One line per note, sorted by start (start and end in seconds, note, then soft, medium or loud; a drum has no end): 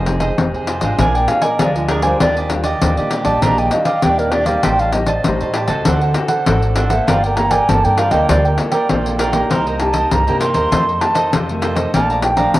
0.00 0.29 F1 loud
0.00 0.35 F3 medium
0.06 0.25 C4 medium
0.06 0.26 D#4 medium
0.06 0.26 G#4 medium
0.06 muted cavaquinho stroke soft
0.06 pandeiro medium
0.20 0.52 G#4 medium
0.20 0.51 C5 medium
0.20 0.51 D#5 medium
0.20 pandeiro medium
0.38 0.51 F1 medium
0.38 0.97 C3 medium
0.38 0.67 C4 medium
0.38 0.68 D#4 medium
0.38 0.68 G#4 medium
0.38 pandeiro medium
0.54 0.80 F2 medium
0.54 0.67 G#4 soft
0.54 0.68 C5 soft
0.54 0.68 D#5 soft
0.54 pandeiro soft
0.67 0.82 F4 soft
0.67 0.82 G#4 soft
0.67 0.81 C5 soft
0.67 0.80 D#5 medium
0.67 pandeiro medium
0.81 0.95 G#1 medium
0.81 1.24 G#3 medium
0.81 1.24 D4 medium
0.81 1.24 F4 medium
0.81 0.98 G#4 medium
0.81 0.97 C5 medium
0.81 0.97 D#5 medium
0.81 pandeiro medium
0.98 1.25 A#1 loud
0.98 1.57 A#2 medium
0.98 1.13 D4 medium
0.98 1.13 A#4 medium
0.98 1.14 D5 medium
0.98 1.17 G#5 medium
0.98 1.13 G#5 medium
0.98 pandeiro medium
1.14 1.27 A#4 soft
1.14 1.28 D5 soft
1.14 1.30 G5 medium
1.14 1.28 G#5 medium
1.14 pandeiro soft
1.28 1.47 G#3 medium
1.28 1.48 D4 medium
1.28 1.48 F4 medium
1.28 1.44 F5 medium
1.28 muted cavaquinho stroke soft
1.28 pandeiro medium
1.42 1.58 A#4 medium
1.42 1.58 D5 medium
1.42 1.61 D#5 medium
1.42 1.57 G#5 medium
1.42 pandeiro medium
1.59 2.12 D2 medium
1.59 2.18 F3 medium
1.59 2.01 G#3 medium
1.59 1.88 D4 soft
1.59 2.01 D4 medium
1.59 2.02 F4 medium
1.59 1.89 A#4 medium
1.59 1.77 D5 medium
1.59 1.89 D5 medium
1.59 1.90 G#5 soft
1.59 pandeiro medium
1.76 1.90 F4 medium
1.76 pandeiro soft
1.88 2.04 D4 medium
1.88 2.04 G#4 medium
1.88 2.04 A#4 medium
1.88 2.03 D5 medium
1.88 2.02 G#5 medium
1.88 pandeiro medium
2.02 2.45 G3 medium
2.02 2.45 D4 medium
2.02 2.46 F4 medium
2.02 2.19 A#4 soft
2.02 2.19 C5 medium
2.02 2.19 D5 soft
2.02 2.18 G#5 medium
2.02 pandeiro medium
2.20 2.73 D#2 loud
2.20 2.79 D#3 medium
2.20 2.35 D4 medium
2.20 2.35 G4 medium
2.20 2.39 D5 loud
2.20 2.35 D5 medium
2.20 2.35 D#5 medium
2.20 pandeiro medium
2.36 2.49 G4 soft
2.36 2.50 D5 soft
2.36 2.50 D#5 soft
2.36 pandeiro soft
2.50 2.69 G3 medium
2.50 2.69 D4 medium
2.50 2.69 F4 medium
2.50 muted cavaquinho stroke soft
2.50 pandeiro medium
2.64 2.95 G4 medium
2.64 2.94 D5 medium
2.64 2.95 D#5 medium
2.64 pandeiro medium
2.82 2.95 D#2 medium
2.82 3.40 A#2 medium
2.82 3.23 G3 medium
2.82 3.23 D4 medium
2.82 3.23 F4 medium
2.82 pandeiro medium
2.97 3.23 D#3 medium
2.97 3.10 G4 soft
2.97 3.11 D5 soft
2.97 3.11 D#5 soft
2.97 pandeiro soft
3.11 3.25 D4 soft
3.11 3.25 G4 soft
3.11 3.23 D5 medium
3.11 3.24 D#5 soft
3.11 pandeiro medium
3.24 3.39 A#1 medium
3.24 3.67 G3 medium
3.24 3.67 D4 medium
3.24 3.67 F4 medium
3.24 3.41 G4 medium
3.24 3.40 D5 medium
3.24 3.41 D#5 medium
3.24 3.44 A5 medium
3.24 pandeiro medium
3.42 3.68 A#1 loud
3.42 4.00 D#3 medium
3.42 3.56 D4 medium
3.42 3.57 G4 medium
3.42 3.57 D5 medium
3.42 3.57 D#5 medium
3.42 3.60 A#5 medium
3.42 pandeiro medium
3.58 3.71 G4 soft
3.58 3.71 D5 soft
3.58 3.71 D#5 medium
3.58 3.73 G5 medium
3.58 pandeiro soft
3.71 3.90 G3 medium
3.71 3.90 D4 medium
3.71 3.90 F4 medium
3.71 3.87 D#5 medium
3.71 muted cavaquinho stroke soft
3.71 pandeiro medium
3.85 4.02 G4 soft
3.85 4.01 D5 medium
3.85 4.01 D#5 medium
3.85 4.05 F5 medium
3.85 pandeiro medium
4.02 4.55 D#2 medium
4.02 4.61 A#2 medium
4.02 4.32 G3 medium
4.02 4.31 D4 medium
4.02 4.32 D4 medium
4.02 4.32 F4 medium
4.02 4.31 G4 medium
4.02 4.33 D5 medium
4.02 4.32 D#5 soft
4.02 4.21 G5 loud
4.02 pandeiro medium
4.19 4.33 A#4 medium
4.19 pandeiro soft
4.31 4.47 D4 medium
4.31 4.47 G4 medium
4.31 4.47 D5 medium
4.31 4.45 D5 medium
4.31 4.46 D#5 medium
4.31 pandeiro medium
4.46 4.89 G3 medium
4.46 4.89 C4 medium
4.46 4.89 D#4 medium
4.46 4.63 G4 soft
4.46 4.62 D5 medium
4.46 4.62 D#5 soft
4.46 4.65 F5 medium
4.46 pandeiro medium
4.63 5.16 A1 loud
4.63 5.22 A2 medium
4.63 4.78 G4 medium
4.63 4.79 C5 medium
4.63 4.79 D#5 medium
4.63 4.81 G5 loud
4.63 4.79 A5 medium
4.63 pandeiro medium
4.79 4.93 C5 soft
4.79 4.94 D#5 soft
4.79 4.94 F5 medium
4.79 4.94 A5 soft
4.79 pandeiro soft
4.92 5.12 G3 soft
4.92 5.12 C4 medium
4.92 5.12 D#4 medium
4.92 5.09 D#5 medium
4.92 muted cavaquinho stroke soft
4.92 pandeiro medium
5.06 5.39 C5 medium
5.06 5.24 D5 medium
5.06 5.38 D#5 medium
5.06 5.38 A5 medium
5.06 pandeiro medium
5.24 5.38 A1 medium
5.24 5.83 A2 medium
5.24 5.66 G3 medium
5.24 5.66 C4 medium
5.24 5.66 D#4 medium
5.24 5.43 C5 medium
5.24 pandeiro medium
5.41 5.67 A2 medium
5.41 5.54 C5 soft
5.41 5.54 D#5 soft
5.41 5.55 A5 soft
5.41 pandeiro soft
5.54 5.69 G4 soft
5.54 5.68 C5 soft
5.54 5.68 D#5 soft
5.54 5.67 A5 medium
5.54 pandeiro medium
5.67 5.82 C#2 medium
5.67 6.10 C4 medium
5.67 6.11 F#4 medium
5.67 6.11 A4 medium
5.67 5.84 C5 medium
5.67 5.84 D#5 medium
5.67 5.83 A5 medium
5.67 pandeiro medium
5.85 6.12 D2 loud
5.85 6.44 D3 medium
5.85 6.00 D4 medium
5.85 6.00 A4 medium
5.85 6.01 C5 medium
5.85 6.01 F#5 medium
5.85 pandeiro medium
6.01 6.14 A4 soft
6.01 6.15 C5 soft
6.01 6.15 F#5 soft
6.01 pandeiro soft
6.14 6.34 C4 medium
6.14 6.34 F#4 medium
6.14 6.34 A4 medium
6.14 muted cavaquinho stroke soft
6.14 pandeiro medium
6.28 6.45 A4 medium
6.28 6.45 C5 medium
6.28 6.44 F#5 medium
6.28 pandeiro medium
6.46 6.98 G#1 medium
6.46 6.88 C4 medium
6.46 6.75 D4 soft
6.46 6.88 F#4 soft
6.46 6.76 A4 medium
6.46 6.88 A4 medium
6.46 6.76 C5 soft
6.46 6.77 F#5 medium
6.46 pandeiro medium
6.62 pandeiro soft
6.76 6.91 D4 medium
6.76 6.91 A4 medium
6.76 6.90 C5 medium
6.76 6.89 F#5 medium
6.76 pandeiro medium
6.90 7.32 A#3 medium
6.90 7.33 F4 medium
6.90 7.33 A4 medium
6.90 7.06 A4 soft
6.90 7.06 C5 soft
6.90 7.09 E5 medium
6.90 7.05 F#5 medium
6.90 pandeiro medium
7.07 7.59 G1 loud
7.07 7.66 G3 medium
7.07 7.21 F4 medium
7.07 7.22 A#4 medium
7.07 7.22 D5 medium
7.07 7.25 F5 medium
7.07 7.22 G5 medium
7.07 pandeiro medium
7.24 7.36 A#4 soft
7.24 7.36 D5 soft
7.24 7.38 G5 medium
7.24 7.37 G5 soft
7.24 pandeiro soft
7.37 7.55 A#3 medium
7.37 7.55 F4 medium
7.37 7.56 A4 medium
7.37 7.53 A#5 loud
7.37 muted cavaquinho stroke soft
7.37 pandeiro medium
7.50 7.82 A#4 medium
7.50 7.82 D5 medium
7.50 7.81 G5 medium
7.50 7.71 G#5 medium
7.50 pandeiro medium
7.69 7.81 G1 medium
7.69 8.26 D3 medium
7.69 7.97 A#3 medium
7.69 7.97 F4 medium
7.69 7.98 A4 medium
7.69 7.87 A5 loud
7.69 pandeiro medium
7.84 8.10 G2 medium
7.84 7.97 A#4 soft
7.84 7.97 D5 soft
7.84 7.98 G5 soft
7.84 8.00 G5 medium
7.84 pandeiro soft
7.97 8.12 F4 soft
7.97 8.12 A#4 soft
7.97 8.12 D5 medium
7.97 8.13 F5 medium
7.97 8.10 G5 medium
7.97 pandeiro medium
8.11 8.26 D2 medium
8.11 8.53 A#3 medium
8.11 8.54 F4 medium
8.11 8.54 A4 medium
8.11 8.28 A#4 medium
8.11 8.27 D5 medium
8.11 8.28 D#5 medium
8.11 8.27 G5 medium
8.11 pandeiro medium
8.29 8.55 D2 loud
8.29 8.87 G3 medium
8.29 8.43 F4 medium
8.29 8.44 A#4 medium
8.29 8.48 D5 medium
8.29 8.44 D5 medium
8.29 8.43 G5 medium
8.29 pandeiro medium
8.45 8.57 A#4 soft
8.45 8.58 D5 soft
8.45 8.58 G5 medium
8.45 pandeiro soft
8.58 8.85 A#3 medium
8.58 8.85 F4 medium
8.58 8.85 A4 medium
8.58 muted cavaquinho stroke soft
8.58 pandeiro medium
8.71 8.88 A#4 medium
8.71 8.88 D5 medium
8.71 8.87 G5 medium
8.71 pandeiro medium
8.89 9.42 A#1 medium
8.89 9.48 D3 medium
8.89 9.19 A#3 medium
8.89 9.17 F4 soft
8.89 9.19 F4 medium
8.89 9.19 A4 medium
8.89 9.18 A#4 soft
8.89 9.19 D5 soft
8.89 9.19 G5 medium
8.89 pandeiro medium
9.06 pandeiro soft
9.19 9.33 F4 medium
9.19 9.33 A#4 medium
9.19 9.32 D5 medium
9.19 9.31 G5 medium
9.19 pandeiro medium
9.32 9.75 A#3 medium
9.32 9.76 D#4 medium
9.32 9.76 G4 medium
9.32 9.49 A#4 soft
9.32 9.48 D5 soft
9.32 9.48 G5 medium
9.32 pandeiro medium
9.50 10.02 C2 loud
9.50 10.09 C3 medium
9.50 9.64 D#4 medium
9.50 9.65 A#4 medium
9.50 9.65 C5 medium
9.50 9.65 D#5 medium
9.50 9.79 A#5 medium
9.50 pandeiro medium
9.66 9.78 A#4 soft
9.66 9.79 C5 soft
9.66 9.79 D#5 soft
9.66 pandeiro soft
9.79 10.21 A#3 medium
9.79 10.22 D#4 medium
9.79 10.22 G4 medium
9.79 10.13 A5 medium
9.79 muted cavaquinho stroke soft
9.79 pandeiro medium
9.93 10.25 A#4 medium
9.93 10.24 C5 medium
9.93 10.24 D#5 medium
9.93 pandeiro medium
10.11 10.24 C2 medium
10.11 10.69 G2 medium
10.11 10.40 A#5 medium
10.11 pandeiro medium
10.27 10.53 C3 medium
10.27 10.68 A#3 medium
10.27 10.68 D#4 medium
10.27 10.68 G4 medium
10.27 10.40 A#4 soft
10.27 10.40 C5 soft
10.27 10.41 D#5 soft
10.27 pandeiro soft
10.40 10.55 D#4 soft
10.40 10.55 A#4 medium
10.40 10.54 C5 medium
10.40 10.53 D#5 medium
10.40 11.03 C6 loud
10.40 pandeiro medium
10.54 10.69 D#2 medium
10.54 10.70 A#4 medium
10.54 10.70 C5 medium
10.54 10.69 D#5 medium
10.54 pandeiro medium
10.71 10.98 F2 loud
10.71 11.30 F2 soft
10.71 10.90 D#3 medium
10.71 10.91 A3 medium
10.71 10.91 C4 medium
10.71 10.86 F4 medium
10.71 10.86 A4 medium
10.71 10.86 C5 medium
10.71 10.86 D#5 medium
10.71 pandeiro medium
10.87 11.00 A4 soft
10.87 11.00 C5 soft
10.87 11.01 D#5 soft
10.87 pandeiro soft
11.01 11.31 D#3 medium
11.01 11.31 A3 medium
11.01 11.31 C4 medium
11.01 11.32 A5 medium
11.01 muted cavaquinho stroke soft
11.01 pandeiro medium
11.14 11.31 A4 medium
11.14 11.31 C5 medium
11.14 11.30 D#5 medium
11.14 pandeiro medium
11.32 11.85 F2 medium
11.32 11.91 C3 medium
11.32 11.60 F4 soft
11.32 11.61 A4 medium
11.32 11.62 C5 soft
11.32 11.62 D#5 medium
11.32 pandeiro medium
11.49 11.90 D#3 medium
11.49 11.90 A3 medium
11.49 11.90 C4 medium
11.49 pandeiro soft
11.61 11.76 F4 medium
11.61 11.76 A4 medium
11.61 11.75 C5 medium
11.61 11.74 D#5 medium
11.61 pandeiro medium
11.75 11.92 A4 soft
11.75 11.91 C5 soft
11.75 11.91 D#5 medium
11.75 pandeiro medium
11.94 12.45 A#1 loud
11.94 12.52 A#2 medium
11.94 12.35 F3 medium
11.94 12.35 A3 medium
11.94 12.35 D4 medium
11.94 12.08 A4 medium
11.94 12.08 D5 medium
11.94 12.08 F5 medium
11.94 12.22 A5 medium
11.94 12.09 A#5 medium
11.94 pandeiro medium
12.10 12.22 D5 soft
12.10 12.23 F5 medium
12.10 12.23 A#5 soft
12.10 pandeiro soft
12.22 12.57 G5 medium
12.22 muted cavaquinho stroke soft
12.22 pandeiro medium
12.37 12.60 F3 medium
12.37 12.60 A3 medium
12.37 12.60 D4 medium
12.37 12.60 D5 medium
12.37 12.60 F5 medium
12.37 12.60 A#5 medium
12.37 pandeiro medium
12.54 12.60 A#1 medium
12.54 12.60 F2 medium
12.54 12.60 A5 medium
12.54 pandeiro medium